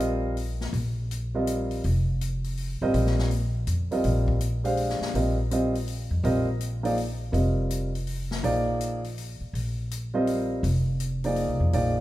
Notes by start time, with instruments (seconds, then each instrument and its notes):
Already playing: upright bass A#1, grand piano G3 C4 F4 A#4 D#5
0.00 closed hi-hat
0.37 open hi-hat
0.61 snare
0.73 upright bass A#1, open hi-hat
1.11 closed hi-hat
1.34 grand piano G3 C4 F4 A#4 D#5
1.47 closed hi-hat
1.71 open hi-hat
1.84 upright bass F1, open hi-hat
2.21 closed hi-hat
2.44 open hi-hat
2.57 open hi-hat
2.81 upright bass G#1, grand piano G3 C4 F4 A#4 D#5
2.94 upright bass A#1, open hi-hat
3.06 snare
3.19 snare
3.31 open hi-hat
3.67 upright bass F2, closed hi-hat
3.91 grand piano G3 C4 F4 A#4 D#5, open hi-hat
4.04 upright bass A#1, open hi-hat
4.28 kick
4.40 closed hi-hat
4.64 grand piano G#3 D4 G4 C5 F5, open hi-hat
4.77 open hi-hat
4.89 snare
5.00 muted upright bass stroke, snare
5.14 upright bass A#1, grand piano G3 C4 F4 A#4 D#5, open hi-hat
5.51 grand piano G3 C4 F4 A#4 D#5, closed hi-hat
5.75 open hi-hat
5.87 open hi-hat
6.11 upright bass F2
6.23 upright bass A#1, grand piano G3 C4 F4 A#4 D#5, open hi-hat
6.60 closed hi-hat
6.83 grand piano F3 A#3 D#4 G#4 D5, open hi-hat
6.98 open hi-hat
7.32 upright bass F1, grand piano G3 C4 F4 A#4 D#5, open hi-hat
7.70 closed hi-hat
7.95 open hi-hat
8.07 open hi-hat
8.31 snare
8.43 upright bass A#1, grand piano F3 A#3 D#4 G#4 D5, open hi-hat
8.80 closed hi-hat
9.04 open hi-hat
9.18 open hi-hat
9.41 muted upright bass stroke
9.53 upright bass A#1, open hi-hat
9.91 closed hi-hat
10.14 grand piano G3 C4 F4 A#4 D#5
10.27 open hi-hat
10.63 upright bass F1, open hi-hat
11.00 closed hi-hat
11.24 grand piano F3 A#3 D#4 G#4 D5, open hi-hat
11.36 open hi-hat
11.48 upright bass C2
11.60 upright bass F2
11.73 upright bass A#1, grand piano F3 A#3 D#4 G#4 D5, open hi-hat